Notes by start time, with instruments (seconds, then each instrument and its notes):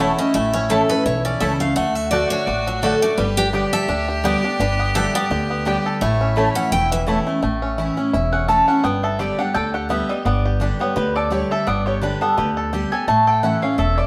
Already playing: steel-string acoustic guitar E2, five-string banjo E3 C#4 E4 A4, fiddle E4
0.00 steel-string acoustic guitar E3 A3 C#4 E4 F#5, five-string banjo A3, mandolin C#5 A5
0.18 five-string banjo C#4, steel-string acoustic guitar C#4 E4 D#5
0.34 upright bass A1, steel-string acoustic guitar A2 E5, five-string banjo A3
0.53 five-string banjo C#4, steel-string acoustic guitar C#5
0.69 steel-string acoustic guitar E3 A3 C#4 E4 A4, mandolin A3 E4 C#5 A5, five-string banjo E4
0.89 steel-string acoustic guitar C#4 E4 B4, five-string banjo A4
1.06 upright bass B1, steel-string acoustic guitar E2 C#5, five-string banjo E4
1.25 five-string banjo C#4, steel-string acoustic guitar D5
1.40 upright bass C#2, steel-string acoustic guitar E3 A3 C#4 E4 E5, mandolin A3 E4 C#5 A5, five-string banjo A4
1.60 five-string banjo A3, steel-string acoustic guitar C#4 E4 F5
1.76 upright bass D2, steel-string acoustic guitar D3 F#5, five-string banjo A3, fiddle F#4
1.95 steel-string acoustic guitar E5
2.11 steel-string acoustic guitar D3 A3 D4 F#4 D5, mandolin A3 F#4 D5 F#5, five-string banjo A3
2.30 five-string banjo D4, steel-string acoustic guitar C#5
2.47 upright bass A1, steel-string acoustic guitar A2 D5, five-string banjo F#4
2.67 five-string banjo F#3, steel-string acoustic guitar F#4
2.82 steel-string acoustic guitar D3 A3 D4 F#4 A4, mandolin A3 F#4 D5 F#5, five-string banjo F#4
3.02 five-string banjo A3, steel-string acoustic guitar D4 F#4 D5
3.18 upright bass G1, steel-string acoustic guitar G2 B4, five-string banjo G3, fiddle G4
3.37 five-string banjo D4, steel-string acoustic guitar G4
3.53 steel-string acoustic guitar D3 G3 B3 G4, mandolin B3 G4 D5 G5, five-string banjo G4
3.73 five-string banjo A4, steel-string acoustic guitar E5
3.88 upright bass D2, steel-string acoustic guitar D3, five-string banjo D4
4.08 five-string banjo G4
4.24 steel-string acoustic guitar D3 G3 B3 G4 D5, mandolin B3 G4 D5 G5, five-string banjo B3
4.43 steel-string acoustic guitar B3 G4, five-string banjo D4
4.60 upright bass G1, steel-string acoustic guitar G2 B4, five-string banjo D4
4.79 five-string banjo B3
4.94 steel-string acoustic guitar D3 G3 B3 G4 E5, mandolin B3 G4 D5 G5, five-string banjo A4
5.14 five-string banjo B3, steel-string acoustic guitar B3 G4 D5
5.30 upright bass D2, steel-string acoustic guitar D3, five-string banjo G4
5.50 five-string banjo B3
5.65 steel-string acoustic guitar D3 G3 B3 G4, mandolin B3 G4 D5 G5, five-string banjo G4
5.86 five-string banjo A4
6.01 upright bass A1, steel-string acoustic guitar A2 C#5, five-string banjo A3, fiddle E4
6.21 five-string banjo C#4
6.36 steel-string acoustic guitar E3 A3 C#4 E4, mandolin A3 E4 C#5 A5, five-string banjo A3
6.55 five-string banjo C#4, steel-string acoustic guitar F#5
6.72 upright bass E1, steel-string acoustic guitar E2 G5, five-string banjo E4
6.92 five-string banjo E3, steel-string acoustic guitar E5
7.07 steel-string acoustic guitar E3 A3 C#4 E4, mandolin A3 E4 C#5 A5, five-string banjo E4
7.27 five-string banjo A3, steel-string acoustic guitar C#4 E4
7.42 upright bass A1, steel-string acoustic guitar A2, five-string banjo A3
7.62 five-string banjo C#4
7.78 steel-string acoustic guitar E3 A3 C#4 E4, five-string banjo E4
7.97 five-string banjo C#4, steel-string acoustic guitar C#4 E4
8.13 upright bass E1, steel-string acoustic guitar E2, five-string banjo E4
8.32 five-string banjo C#4, mandolin F#5
8.48 steel-string acoustic guitar E3 A3 C#4 E4, five-string banjo A4, mandolin A5
8.68 five-string banjo C#4, steel-string acoustic guitar C#4 E4, mandolin F#5
8.84 upright bass G1, steel-string acoustic guitar G2, five-string banjo B3, mandolin G5
9.03 five-string banjo A4, mandolin E5
9.19 steel-string acoustic guitar D3 G3 B3 G4, five-string banjo G4, mandolin D5
9.38 steel-string acoustic guitar B3 G4, five-string banjo D4, mandolin F#5
9.54 upright bass D2, steel-string acoustic guitar D3, five-string banjo A4, mandolin G5
9.74 five-string banjo G4, mandolin F#5
9.89 steel-string acoustic guitar D3 G3 B3 G4, five-string banjo B3, mandolin E5
10.09 five-string banjo G3, steel-string acoustic guitar B3 G4, mandolin D#5
10.25 upright bass G1, steel-string acoustic guitar G2, five-string banjo B3, mandolin D5
10.45 five-string banjo G4
10.60 steel-string acoustic guitar D3 G3 B3 G4, five-string banjo D4
10.79 five-string banjo B3, steel-string acoustic guitar B3 G4, mandolin C#5
10.96 upright bass D2, steel-string acoustic guitar D3, five-string banjo G4, mandolin B4
11.16 five-string banjo A4, mandolin D5
11.30 steel-string acoustic guitar D3 G3 B3 G4, five-string banjo G4, mandolin C#5
11.51 five-string banjo A4, mandolin E5
11.67 upright bass G1, steel-string acoustic guitar G2, five-string banjo B3, mandolin D5
11.86 five-string banjo G4, mandolin C#5
12.01 steel-string acoustic guitar D3 G3 B3 G4, five-string banjo D4, mandolin B4
12.21 five-string banjo B3, steel-string acoustic guitar B3 G4, mandolin A4
12.37 upright bass D2, steel-string acoustic guitar D3, five-string banjo G4, mandolin B4
12.57 five-string banjo A4
12.73 steel-string acoustic guitar D3 G3 B3 G4, five-string banjo G4
12.92 steel-string acoustic guitar B3 G4, five-string banjo A4, mandolin G#5
13.08 upright bass A1, steel-string acoustic guitar A2, five-string banjo A3, mandolin A5
13.27 five-string banjo A4, mandolin G5
13.43 steel-string acoustic guitar E3 A3 C#4 E4, five-string banjo E4, mandolin F#5
13.62 five-string banjo C#4, steel-string acoustic guitar C#4 E4, mandolin F5
13.78 upright bass E1, steel-string acoustic guitar E2, five-string banjo A4, mandolin E5
13.98 five-string banjo E4, mandolin D5